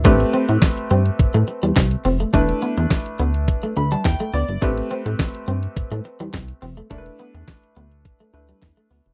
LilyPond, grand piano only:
\new Staff \with { instrumentName = "Grand piano" } { \time 4/4 \key a \minor \tempo 4 = 105 << { r1 | r2 r8 b''16 a''16 g''8 d''8 | r1 | r1 | } \\ { <a c' g' b'>1 | <a d' e' b'>1 | <a c' g' b'>1 | <a d' e' bes' b'>2~ <a d' e' bes' b'>8 <a d' e' b'>4. | } >> }